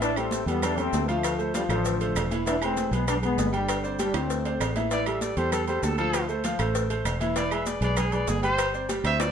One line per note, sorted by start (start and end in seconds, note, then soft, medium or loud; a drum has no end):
0.00 0.42 A1 medium
0.00 0.14 E3 medium
0.00 0.17 A3 medium
0.00 0.16 D4 loud
0.00 0.14 E4 medium
0.00 0.14 E5 medium
0.00 cowbell loud
0.00 high conga soft
0.00 low agogo medium
0.00 maracas medium
0.16 0.42 G3 medium
0.16 0.48 A3 medium
0.16 0.48 C4 loud
0.16 0.42 G4 medium
0.16 0.42 A4 medium
0.16 low agogo loud
0.16 claves medium
0.16 maracas soft
0.31 cowbell medium
0.31 high conga medium
0.31 low timbale medium
0.31 maracas medium
0.46 0.89 E2 loud
0.46 0.72 G3 medium
0.46 0.63 G3 medium
0.46 0.62 B3 loud
0.46 0.72 G4 medium
0.46 0.73 A4 medium
0.46 high conga soft
0.46 low agogo medium
0.46 maracas soft
0.62 0.79 A3 medium
0.62 0.78 D4 loud
0.62 cowbell loud
0.62 high conga soft
0.62 low conga medium
0.62 low agogo loud
0.62 claves medium
0.62 maracas medium
0.77 1.03 G3 medium
0.77 1.07 A3 medium
0.77 1.09 C4 loud
0.77 1.03 G4 medium
0.77 1.03 A4 medium
0.77 high conga soft
0.77 low conga medium
0.77 low agogo medium
0.77 maracas soft
0.93 1.64 D2 medium
0.93 cowbell medium
0.93 high conga medium
0.93 low timbale medium
0.93 maracas medium
1.08 1.33 F3 medium
1.08 1.55 F3 medium
1.08 1.54 A3 loud
1.08 1.33 F4 medium
1.08 1.34 F5 medium
1.08 high conga soft
1.08 low agogo medium
1.08 maracas soft
1.23 cowbell loud
1.23 low agogo loud
1.23 claves medium
1.23 maracas medium
1.39 1.51 A3 medium
1.39 1.51 A4 medium
1.39 1.52 C5 medium
1.39 high conga soft
1.39 maracas soft
1.54 1.62 D3 medium
1.54 1.67 F3 medium
1.54 1.62 G3 medium
1.54 1.67 F4 medium
1.54 1.67 F5 medium
1.54 cowbell medium
1.54 high conga medium
1.54 low timbale medium
1.54 low agogo medium
1.54 maracas medium
1.69 2.12 A1 loud
1.69 2.27 D3 medium
1.69 2.27 F3 loud
1.69 1.95 A3 medium
1.69 1.95 A4 medium
1.69 1.95 C5 medium
1.69 cowbell medium
1.69 high conga soft
1.69 low agogo loud
1.69 claves medium
1.69 maracas soft
1.85 cowbell loud
1.85 maracas medium
2.00 2.25 A3 medium
2.00 2.26 A4 medium
2.00 2.26 C5 medium
2.00 high conga soft
2.00 low agogo medium
2.00 maracas soft
2.15 2.86 E1 medium
2.15 cowbell medium
2.15 high conga soft
2.15 low timbale medium
2.15 low agogo loud
2.15 claves medium
2.15 maracas medium
2.31 2.44 E3 medium
2.31 2.44 E4 medium
2.31 2.44 E5 medium
2.31 high conga medium
2.31 low agogo medium
2.31 maracas soft
2.46 2.59 E3 medium
2.46 2.55 B3 medium
2.46 2.54 D4 loud
2.46 2.59 E4 medium
2.46 2.59 E5 medium
2.46 cowbell loud
2.46 high conga soft
2.46 low agogo medium
2.46 maracas medium
2.61 2.87 E3 medium
2.61 2.91 A3 medium
2.61 2.91 C4 loud
2.61 2.87 G#4 medium
2.61 2.87 B4 medium
2.61 high conga soft
2.61 low agogo loud
2.61 claves medium
2.61 maracas soft
2.77 cowbell medium
2.77 high conga loud
2.77 low timbale medium
2.77 maracas medium
2.91 3.34 B1 loud
2.91 3.17 G#3 medium
2.91 3.07 G#3 medium
2.91 3.07 B3 medium
2.91 3.17 G#4 medium
2.91 3.17 B4 medium
2.91 high conga soft
2.91 low agogo medium
2.91 maracas soft
3.08 3.16 B3 medium
3.08 3.15 D4 loud
3.08 cowbell loud
3.08 high conga soft
3.08 low conga medium
3.08 low agogo loud
3.08 claves medium
3.08 maracas medium
3.22 3.48 G#3 medium
3.22 3.52 G#3 medium
3.22 3.52 B3 loud
3.22 3.48 G#4 medium
3.22 3.48 B4 medium
3.22 high conga soft
3.22 low conga medium
3.22 low agogo medium
3.22 maracas soft
3.38 4.09 G1 medium
3.38 cowbell medium
3.38 high conga medium
3.38 low timbale medium
3.38 maracas medium
3.52 3.97 D3 medium
3.52 3.78 G3 medium
3.52 3.97 G3 medium
3.52 3.78 G4 medium
3.52 3.78 G5 medium
3.52 high conga soft
3.52 low agogo medium
3.52 maracas soft
3.68 cowbell loud
3.68 high conga soft
3.68 low agogo loud
3.68 claves medium
3.68 maracas medium
3.84 3.96 C4 medium
3.84 3.96 C5 medium
3.84 3.97 D5 medium
3.84 high conga soft
3.84 maracas soft
3.99 4.12 G3 medium
3.99 4.16 G3 medium
3.99 4.15 D4 medium
3.99 4.12 G4 medium
3.99 4.12 G5 medium
3.99 cowbell medium
3.99 high conga medium
3.99 low timbale medium
3.99 low agogo medium
3.99 maracas medium
4.14 4.57 D2 loud
4.14 4.73 A3 medium
4.14 4.39 C4 medium
4.14 4.72 C4 medium
4.14 4.39 C5 medium
4.14 4.40 D5 medium
4.14 cowbell medium
4.14 high timbale medium
4.14 low agogo loud
4.14 claves medium
4.14 maracas soft
4.30 cowbell loud
4.30 maracas medium
4.45 4.70 C4 medium
4.45 4.70 C5 medium
4.45 4.71 D5 medium
4.45 high conga soft
4.45 low timbale medium
4.45 low agogo medium
4.45 maracas soft
4.60 5.31 A1 medium
4.60 cowbell medium
4.60 high conga soft
4.60 low timbale loud
4.60 low agogo loud
4.60 claves medium
4.60 maracas medium
4.76 4.89 E3 medium
4.76 4.89 E4 medium
4.76 4.89 E5 medium
4.76 high conga medium
4.76 low timbale medium
4.76 low agogo medium
4.76 maracas soft
4.91 5.04 E3 medium
4.91 5.04 E4 medium
4.91 5.09 D5 medium
4.91 5.04 E5 medium
4.91 cowbell loud
4.91 high conga soft
4.91 low agogo medium
4.91 maracas medium
5.06 5.32 G3 medium
5.06 5.32 G4 medium
5.06 5.32 A4 medium
5.06 5.24 E5 medium
5.06 low agogo loud
5.06 claves medium
5.06 maracas soft
5.21 5.39 D5 medium
5.21 cowbell medium
5.21 high conga medium
5.21 low timbale medium
5.21 maracas medium
5.37 5.80 E2 loud
5.37 5.62 G3 medium
5.37 5.63 G4 medium
5.37 5.63 A4 medium
5.37 5.52 C5 medium
5.37 high conga soft
5.37 low agogo medium
5.37 maracas soft
5.52 5.68 A4 medium
5.52 cowbell loud
5.52 high conga soft
5.52 low conga medium
5.52 low agogo loud
5.52 claves medium
5.52 maracas medium
5.68 5.93 G3 medium
5.68 5.93 G4 medium
5.68 5.93 A4 medium
5.68 5.84 C5 medium
5.68 high conga soft
5.68 low agogo medium
5.68 maracas soft
5.83 6.54 D2 medium
5.83 5.98 A4 medium
5.83 cowbell medium
5.83 high conga medium
5.83 low timbale medium
5.83 maracas medium
5.98 6.23 F3 medium
5.98 6.24 F4 medium
5.98 6.28 A4 loud
5.98 6.24 F5 medium
5.98 high conga soft
5.98 low agogo medium
5.98 maracas soft
6.13 cowbell loud
6.13 high conga soft
6.13 low agogo loud
6.13 claves medium
6.13 maracas medium
6.29 6.41 A3 medium
6.29 6.42 A4 medium
6.29 6.42 C5 medium
6.29 high conga soft
6.29 maracas soft
6.44 6.57 F3 medium
6.44 6.57 F4 medium
6.44 6.57 F5 medium
6.44 cowbell medium
6.44 high conga medium
6.44 low timbale medium
6.44 low agogo medium
6.44 maracas medium
6.59 7.02 A1 loud
6.59 6.84 A3 medium
6.59 6.84 A4 medium
6.59 6.85 C5 medium
6.59 cowbell medium
6.59 low agogo loud
6.59 claves medium
6.59 maracas soft
6.75 cowbell loud
6.75 high conga soft
6.75 maracas medium
6.90 7.15 A3 medium
6.90 7.15 A4 medium
6.90 7.15 C5 medium
6.90 high conga soft
6.90 low agogo medium
6.90 maracas soft
7.05 7.76 E1 medium
7.05 cowbell medium
7.05 high conga soft
7.05 low timbale medium
7.05 low agogo loud
7.05 claves medium
7.05 maracas medium
7.20 7.33 E3 medium
7.20 7.33 E4 medium
7.20 7.33 E5 medium
7.20 high conga medium
7.20 low agogo medium
7.20 maracas soft
7.36 7.49 E3 medium
7.36 7.49 E4 medium
7.36 7.54 D5 medium
7.36 7.49 E5 medium
7.36 cowbell loud
7.36 high conga soft
7.36 low agogo medium
7.36 maracas medium
7.51 7.76 G#3 medium
7.51 7.77 G#4 medium
7.51 7.77 B4 medium
7.51 7.68 E5 medium
7.51 low agogo loud
7.51 claves medium
7.51 maracas soft
7.66 7.82 D5 medium
7.66 cowbell medium
7.66 high conga medium
7.66 low timbale medium
7.66 maracas medium
7.81 8.24 B1 loud
7.81 8.07 G#3 medium
7.81 8.07 G#4 medium
7.81 8.07 B4 medium
7.81 7.97 D5 medium
7.81 high conga soft
7.81 low agogo medium
7.81 maracas soft
7.97 8.15 G#4 medium
7.97 cowbell loud
7.97 high conga soft
7.97 low conga medium
7.97 low agogo loud
7.97 claves medium
7.97 maracas medium
8.12 8.38 G#3 medium
8.12 8.38 G#4 medium
8.12 8.38 B4 medium
8.12 8.30 D5 medium
8.12 high conga soft
8.12 low conga medium
8.12 low agogo medium
8.12 maracas soft
8.27 8.99 G1 loud
8.27 8.43 G#4 medium
8.27 cowbell medium
8.27 high conga medium
8.27 low timbale medium
8.27 maracas medium
8.42 8.68 G3 medium
8.42 8.68 G4 medium
8.42 8.73 C5 loud
8.42 8.68 G5 medium
8.42 low agogo medium
8.42 maracas soft
8.58 cowbell loud
8.58 low agogo loud
8.58 claves medium
8.58 maracas medium
8.73 8.86 C4 medium
8.73 8.86 C5 medium
8.73 8.86 D5 medium
8.73 high conga soft
8.73 maracas soft
8.89 9.01 G3 medium
8.89 9.02 G4 medium
8.89 9.02 G5 medium
8.89 cowbell medium
8.89 high conga medium
8.89 low timbale medium
8.89 low agogo medium
8.89 maracas medium
9.04 9.32 D2 loud
9.04 9.29 C4 medium
9.04 9.30 C5 medium
9.04 9.30 D5 medium
9.04 9.22 E5 loud
9.04 cowbell medium
9.04 low agogo loud
9.04 claves medium
9.04 maracas soft
9.20 9.32 D5 medium
9.20 cowbell loud
9.20 high bongo medium
9.20 high conga soft
9.20 high timbale loud
9.20 maracas medium